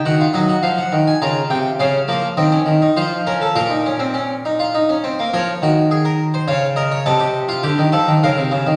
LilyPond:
<<
  \new Staff \with { instrumentName = "Harpsichord" } { \time 3/4 \key des \major \tempo 4 = 103 << { ges''8 ees''8 f''16 ges''8 aes''16 bes''8 g''8 | \key bes \minor f''4 ees''4 c''8 bes'16 a'16 | bes'2~ bes'8 r8 | des''2 f''8 ees''16 des''16 |
ees''2 f''4 | } \\ { ges'16 f'16 ees'16 ges'4~ ges'16 f'4 | des'8 bes8 c'16 des'8 ees'16 f'8 des'8 | f'16 ees'16 des'16 c'16 des'8 ees'16 f'16 ees'16 des'16 c'16 bes16 | bes'8 ges'8 aes'16 bes'8 c''16 des''8 bes'8 |
a'16 g'8 f'16 g'8 a'8 bes'4 | } >> }
  \new Staff \with { instrumentName = "Harpsichord" } { \clef bass \time 3/4 \key des \major ees8 ges8 f8 ees8 des8 c8 | \key bes \minor des8 f8 ees8 ees8 f4 | bes,2~ bes,8 r8 | f8 ees4. des4 |
c4 d16 ees16 f16 ees16 des16 c16 des16 ees16 | }
>>